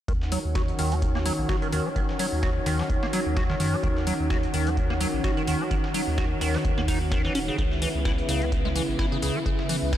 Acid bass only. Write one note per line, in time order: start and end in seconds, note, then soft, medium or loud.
0.09 0.13 D#3 medium
0.32 0.39 F#3 medium
0.55 0.63 F#4 medium
0.79 0.93 D#3 medium
0.92 0.95 F#3 medium
1.15 1.19 A#3 medium
1.26 1.33 F#3 medium
1.49 1.56 F#4 medium
1.62 1.68 D#3 medium
1.73 1.87 D#3 medium
1.86 1.89 F#3 medium
1.96 2.00 D#3 medium
2.20 2.27 F#3 medium
2.43 2.50 F#4 medium
2.66 2.81 D#3 medium
2.79 2.83 F#3 medium
3.03 3.06 A#3 medium
3.13 3.20 F#3 medium
3.37 3.44 F#4 medium
3.50 3.55 D#3 medium
3.60 3.75 D#3 medium
3.73 3.77 F#3 medium
3.84 3.88 D#3 medium
4.07 4.14 F#3 medium
4.30 4.38 F#4 medium
4.54 4.68 D#3 medium
4.67 4.70 F#3 medium
4.90 4.94 A#3 medium
5.01 5.08 F#3 medium
5.24 5.31 F#4 medium
5.37 5.43 D#3 medium
5.48 5.62 D#3 medium
5.60 5.64 F#3 medium
5.71 5.75 D#3 medium
5.94 6.02 F#3 medium
6.18 6.25 F#4 medium
6.41 6.56 D#3 medium
6.54 6.58 F#3 medium
6.78 6.81 A#3 medium
6.88 6.99 D#4 medium
7.12 7.22 D#3 medium
7.25 7.33 E3 medium
7.35 7.39 C#4 medium
7.48 7.57 C#3 medium
7.58 7.63 C#3 medium
7.82 7.89 E3 medium
8.05 8.13 E4 medium
8.29 8.43 C#3 medium
8.42 8.45 E3 medium
8.65 8.69 G#3 medium
8.76 8.83 E3 medium
8.99 9.06 E4 medium
9.12 9.18 C#3 medium
9.23 9.37 C#3 medium
9.36 9.39 E3 medium
9.46 9.50 C#3 medium
9.69 9.77 E3 medium
9.93 9.97 E4 medium